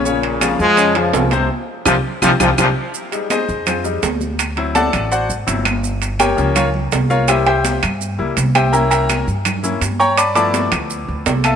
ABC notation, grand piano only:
X:1
M:4/4
L:1/8
Q:1/4=166
K:Cphr
V:1 name="Grand piano"
[D,Dd]2 [F,FA]2 [D,Dd] [F,FA]2 [C,Cc] | z2 [CFG] z [CFG] [CFG] [CFG] z | z2 [EAce]2 [CFAc] z3 | z2 [=A=d^f=a]2 [^Fcdf] z3 |
z2 [GBdg]2 [FBdf] z2 [FBdf] | [Gc=eg] [Gceg]2 z4 [Gceg] | [B=egb] [Begb]2 z4 [dgbd'] | [=d=a=b=d'] [dabd']2 z4 [=A=efa] |]
V:2 name="Grand piano"
z8 | z8 | z [G,A,E] z3 [G,A,E] z2 | z [^F,C=E]3 z2 [F,CE] z |
z3 [F,B,D] z4 | [G,B,=E] z4 [G,B,E] z2 | [B,D=E]3 z2 [B,DE] z2 | z [F,=A,=B,=E]6- [F,A,B,E] |]